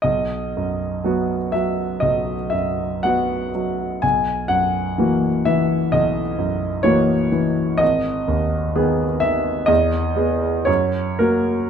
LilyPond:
<<
  \new Staff \with { instrumentName = "Grand piano" } { \time 4/4 \key b \major \tempo 4 = 62 dis''4. e''8 dis''8 e''8 fis''4 | gis''8 fis''4 e''8 dis''4 cis''4 | dis''4. e''8 dis''4 cis''8 ais'8 | }
  \new Staff \with { instrumentName = "Grand piano" } { \clef bass \time 4/4 \key b \major b,,8 fis,8 <fis b fis'>8 fis8 b,,8 fis,8 <fis b fis'>8 fis8 | b,,8 fis,8 <e ais fis'>8 e8 b,,8 fis,8 <e ais fis'>8 e8 | gis,,8 dis,8 <dis b gis'>8 dis8 e,8 <b gis'>8 fis,8 <ais fis'>8 | }
>>